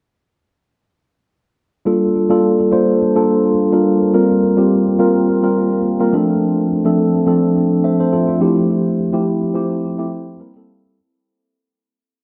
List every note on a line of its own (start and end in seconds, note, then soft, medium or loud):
1.85 2.14 G3 medium
1.85 2.14 A#3 medium
1.85 2.14 D4 medium
1.85 2.14 F4 medium
1.85 2.14 A4 medium
2.29 2.57 G3 medium
2.29 2.57 A#3 medium
2.29 2.58 D4 medium
2.29 2.58 F4 medium
2.29 2.58 A4 medium
2.71 2.99 G3 medium
2.71 2.99 A#3 medium
2.71 3.00 D4 medium
2.71 3.00 F4 medium
2.71 3.00 C5 medium
3.15 3.52 G3 medium
3.15 3.52 A#3 medium
3.15 3.52 D4 medium
3.15 3.52 F4 medium
3.15 3.52 A4 medium
3.72 4.00 G3 medium
3.72 4.00 A#3 medium
3.72 4.00 D4 medium
3.72 4.00 F4 medium
3.72 4.00 A#4 medium
4.13 4.41 G3 medium
4.13 4.42 A#3 medium
4.13 4.42 C4 medium
4.13 4.42 F4 medium
4.13 4.42 A#4 medium
4.57 4.85 G3 medium
4.57 4.85 A#3 medium
4.57 4.85 C4 medium
4.57 4.86 F4 medium
4.57 4.86 G4 medium
4.99 5.27 G3 medium
4.99 5.27 A#3 medium
4.99 5.27 C4 medium
4.99 5.27 F4 medium
4.99 5.27 A#4 medium
5.43 5.79 G3 medium
5.43 5.79 A#3 medium
5.43 5.79 C4 medium
5.43 5.80 F4 medium
5.43 5.80 A#4 medium
6.00 6.13 G3 medium
6.00 6.13 A#3 medium
6.00 6.12 C4 medium
6.00 6.13 F4 medium
6.00 6.14 A#4 medium
6.13 6.70 F3 medium
6.13 6.70 A3 medium
6.13 6.70 C4 medium
6.13 6.70 D4 medium
6.13 6.70 A4 medium
6.85 7.13 F3 medium
6.85 7.13 A3 medium
6.85 7.13 C4 medium
6.85 7.13 D4 medium
6.85 7.13 A4 medium
7.26 7.54 F3 medium
7.26 7.55 A3 medium
7.26 7.55 C4 medium
7.26 7.55 D4 medium
7.26 7.55 A4 medium
7.84 7.99 C5 medium
7.84 7.99 E5 medium
8.00 8.11 A4 medium
8.00 8.12 C5 medium
8.12 8.26 F4 medium
8.12 8.27 A4 medium
8.27 8.55 D4 soft
8.27 8.55 F4 medium
8.40 8.98 F3 medium
8.40 8.98 A3 medium
8.40 8.98 C4 medium
8.40 8.98 E4 medium
8.40 8.98 G4 medium
9.12 9.41 F3 medium
9.12 9.41 A3 medium
9.12 9.41 C4 medium
9.12 9.41 E4 medium
9.12 9.41 G4 medium
9.54 9.82 F3 medium
9.54 9.83 A3 medium
9.54 9.83 C4 medium
9.54 9.83 E4 medium
9.54 9.83 G4 medium
9.98 10.35 F3 medium
9.98 10.35 A3 medium
9.98 10.35 C4 medium
9.98 10.35 E4 medium
9.98 10.35 G4 medium
10.40 10.52 G3 medium
10.40 10.52 A#3 medium
10.40 10.53 C4 medium
10.40 10.53 E4 medium
10.40 10.53 A#4 medium
10.55 10.83 G3 medium
10.55 10.84 A#3 medium
10.55 10.84 C4 medium
10.55 10.84 E4 medium
10.55 10.84 A4 medium